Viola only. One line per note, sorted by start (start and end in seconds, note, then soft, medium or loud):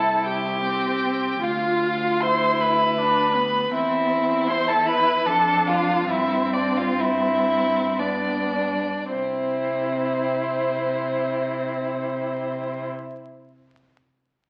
0.00 0.61 E4 soft
0.65 1.41 C4 soft
1.43 2.22 F4 soft
2.21 3.00 E4 soft
2.98 3.38 D4 medium
3.36 3.73 B3 medium
3.74 4.50 C4 medium
4.48 5.27 E4 medium
5.26 6.09 D4 medium
6.09 8.00 C4 medium
7.99 8.83 B3 soft
9.12 12.87 E4 soft